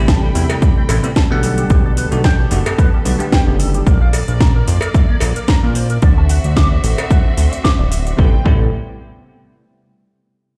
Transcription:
Already playing: A1 C3 G3 A3 E4 G5 B5
0.08 A5, kick, snare, closed hi-hat, shaker
0.23 A4
0.34 E2 C3 G3 A3 E4, open hi-hat, shaker
0.50 A4, closed hi-hat, cowbell, shaker
0.62 D5, kick, closed hi-hat, shaker
0.77 A3
0.89 A1 E4, open hi-hat, cowbell, shaker
1.03 C3 G3 A3 B3 E4 A4, closed hi-hat, shaker
1.16 A5, kick, snare, closed hi-hat, shaker
1.30 B1 D3 G3 A3 B3 A4 F#5
1.43 B3 A4, open hi-hat, shaker
1.58 G4, closed hi-hat, shaker
1.70 B1 G4, kick, closed hi-hat, shaker
1.86 D5
1.97 B4, open hi-hat, shaker
2.11 B1 D3 G3 A3 B3 F#4 G4, closed hi-hat, shaker
2.24 G5, kick, snare, closed hi-hat, shaker
2.40 G4
2.50 F#1 D3 G3 A3 B3 D4 F#4, open hi-hat, shaker
2.66 G4, closed hi-hat, cowbell, shaker
2.78 B4, kick, closed hi-hat, shaker
2.94 G3
3.05 B1 D3 G3 A3 B3 D4 F#4, open hi-hat, shaker
3.19 D3 G3 A3 B3 G4, closed hi-hat, shaker
3.32 G5, kick, snare, closed hi-hat, shaker
3.47 F#1 G4
3.60 A4, open hi-hat, shaker
3.74 G4, closed hi-hat, shaker
3.86 A#1 A#3 A#4 D5, kick, closed hi-hat, shaker
4.01 F5
4.13 D5, open hi-hat, cowbell, shaker
4.28 A#1 A#4, closed hi-hat, shaker
4.40 A#5, kick, snare, closed hi-hat, shaker
4.56 A#4
4.68 F2 F4, open hi-hat, shaker
4.81 A#4, closed hi-hat, cowbell, shaker
4.94 E5, kick, closed hi-hat, shaker
5.10 A#3
5.20 A#1 F4, open hi-hat, cowbell, shaker
5.36 A#4, closed hi-hat, shaker
5.48 A#5, kick, snare, closed hi-hat, shaker
5.63 A#2 A#4
5.75 C5, open hi-hat, shaker
5.90 A#4, closed hi-hat, shaker
6.02 D2 C4 F#4 D5 E5, kick, closed hi-hat, shaker
6.18 A5
6.29 F#5, open hi-hat, shaker
6.44 D2 D5, closed hi-hat, shaker
6.57 D6, kick, snare, closed hi-hat, shaker
6.71 D5
6.84 A1 A4, open hi-hat, shaker
6.98 D5, closed hi-hat, cowbell, shaker
7.10 F#5, kick, closed hi-hat, shaker
7.25 D4
7.37 D2 A4, open hi-hat, shaker
7.52 D5, closed hi-hat, shaker
7.64 D6, kick, snare, closed hi-hat, shaker
7.79 D1 D5
7.91 E5, open hi-hat, shaker
8.06 D5, closed hi-hat, shaker
8.17 A1 C3 G3 A3 B3 C4 E4 A4 B4 G5, kick
8.44 A1 C3 G3 A3 B3 E4 A4, kick

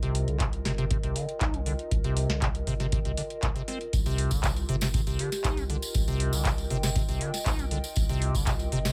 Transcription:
Already playing: C2 F4 A#4 D#5 G5
0.03 C3, closed hi-hat
0.15 open hi-hat
0.28 C2 D3, closed hi-hat
0.40 C3, kick, clap, closed hi-hat
0.53 closed hi-hat
0.65 G1 C3, snare, open hi-hat
0.78 C3, closed hi-hat
0.91 C3, kick, closed hi-hat
1.03 C2 C3, closed hi-hat
1.16 D3, open hi-hat
1.29 closed hi-hat
1.41 C2 D#4, kick, clap, closed hi-hat
1.54 C4, closed hi-hat
1.66 D3, open hi-hat
1.79 closed hi-hat
1.91 C2, kick, closed hi-hat
2.04 C3, closed hi-hat
2.17 open hi-hat
2.29 C2 D3, snare, closed hi-hat
2.42 C3, kick, clap, closed hi-hat
2.55 closed hi-hat
2.67 G1 C3, kick, open hi-hat
2.80 C3, snare, closed hi-hat
2.92 C3, kick, closed hi-hat
3.05 C2 C3, closed hi-hat
3.17 D3, open hi-hat
3.30 closed hi-hat
3.43 C2 C3, kick, clap, closed hi-hat
3.56 C3, closed hi-hat
3.68 C4, snare, open hi-hat
3.81 closed hi-hat
3.93 C2 F4, kick, closed hi-hat, tambourine
4.06 C3, closed hi-hat, tambourine
4.18 open hi-hat
4.31 C2 D3, kick, closed hi-hat, tambourine
4.44 C3, kick, clap, closed hi-hat, tambourine
4.56 A#4, closed hi-hat, tambourine
4.69 G1 C3, open hi-hat
4.81 C3, snare, closed hi-hat, tambourine
4.94 C3, kick, closed hi-hat, tambourine
5.02 G5
5.07 C2 C3 D#5, closed hi-hat, tambourine
5.19 D3 G4, open hi-hat
5.32 snare, closed hi-hat, tambourine
5.44 C2 D#4, kick, clap, closed hi-hat, tambourine
5.57 C4, closed hi-hat, tambourine
5.70 D3, open hi-hat
5.82 closed hi-hat, tambourine
5.94 C2, kick, closed hi-hat, tambourine
6.08 C3, closed hi-hat, tambourine
6.20 open hi-hat
6.33 C2 D3, closed hi-hat, tambourine
6.45 C3, kick, clap, closed hi-hat, tambourine
6.58 closed hi-hat, tambourine
6.70 G1 C3, open hi-hat
6.83 C3, snare, closed hi-hat, tambourine
6.96 C3, kick, closed hi-hat, tambourine
7.08 C2 C3, closed hi-hat, tambourine
7.21 D3, open hi-hat
7.34 snare, closed hi-hat, tambourine
7.46 C2 D#4, kick, clap, closed hi-hat, tambourine
7.59 C4, closed hi-hat, tambourine
7.71 D3, open hi-hat
7.84 closed hi-hat, tambourine
7.96 C2, kick, closed hi-hat, tambourine
8.09 C3, closed hi-hat, tambourine
8.22 open hi-hat
8.35 C2 D3, kick, closed hi-hat, tambourine
8.47 C3, kick, clap, closed hi-hat, tambourine
8.59 closed hi-hat, tambourine
8.72 G1 C3, open hi-hat
8.85 C3, snare, closed hi-hat, tambourine

